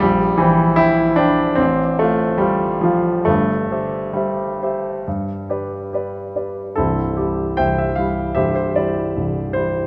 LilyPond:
\new Staff \with { instrumentName = "Grand piano" } { \time 4/4 \key c \major \tempo 4 = 74 << { g8 e8 e'8 d'8 c'8 a8 g8 f8 | a4 g2~ g8 r8 | <c' e' a'>8 g'8 <c'' e'' g''>16 e''16 f''8 <g' c'' e''>16 c''16 d''4 c''8 | } \\ { bes,,8 <e' c'' g''>8 <c'' g''>8 <e' c'' g''>8 a,,8 <f' c'' f''>8 <f' c'' f''>8 <f' c'' f''>8 | <g,, g,>8 <g' c'' e''>8 <g' c'' e''>8 <g' c'' e''>8 g,8 <g' b' d''>8 <g' b' d''>8 <g' b' d''>8 | <c,, c,>8 <g e'>8 <c,, c,>8 <g e'>8 <c,, c,>8 <g e'>8 <c,, c,>8 <g e'>8 | } >> }